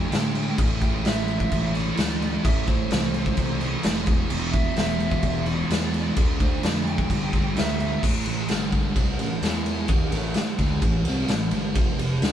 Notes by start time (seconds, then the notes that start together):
Already playing: A3 D4
0.10 A2 D3 A3 D4 G5, snare, crash
0.35 crash
0.57 A1 A2 E3 A3, kick, crash
0.81 E3 A3 G5, kick, crash
1.04 A1 A2 E3 A3 E5, snare, crash
1.28 E3 A3, crash
1.40 kick
1.52 A1, kick, crash
1.74 E3 A3 D5, crash
1.97 D2 A2 E3 A3, snare, crash
2.22 crash
2.43 A1 A2 E3 A3 E5, kick, crash
2.67 E3 A3 C5, kick, crash
2.91 C2 A2 E3 A3, snare, crash
3.14 E3 A3, crash
3.26 kick
3.37 C2, kick, crash
3.60 E3 A3, crash
3.83 F1 A2 E3 A3, snare, crash
4.06 E1 E2 B2 E3, kick, crash
4.29 E1 E2 B2 E3, crash
4.52 E3 E5, kick, crash
4.57 B2
4.75 E1 E2 B2 E3 E5, snare, crash
4.99 E3, crash
5.03 B2
5.12 kick
5.23 E1, kick, crash
5.45 B2 E3 D5, crash
5.67 E2 B2, crash
5.72 E3, snare
5.94 crash
6.13 D2 D3 A3 D4, kick, crash
6.37 A3 D4, kick, crash
6.42 C5
6.61 F2 D3 A3 D4 D5, snare, crash
6.84 A3 D4, crash
6.89 G5
6.98 kick
7.08 G1 G2 D3 G3, kick, crash
7.33 D3 G3, kick, crash
7.56 D2 G2 D3 G3 E5, snare, crash
7.79 E5, crash
8.02 A1 A2 E3 A3, kick, crash
8.26 A1 A2 E3, ride
8.48 G1 G2 D3 G3, snare, ride
8.72 kick, ride
8.94 C2 C3 G3 C4, kick, ride
9.19 A1 A2 E3, ride
9.42 E2 E3 B3 E4, snare, ride
9.66 ride
9.88 D#2 D#3 A#3 D#4, kick, ride
10.11 A1 A2 E3 A3, ride
10.34 snare, ride
10.59 D2 D3 A3 D4, kick, ride
10.82 A1 A2 E3, kick, ride
11.04 C2, ride
11.08 C3 G3 C4
11.28 A1 A2 E3, snare, ride
11.51 G1 G2 D3 G3, ride
11.75 F1 F2 C3 F3, kick, ride
11.98 F1 F2 C3, ride
12.21 D2 D3 A3 D4, snare, ride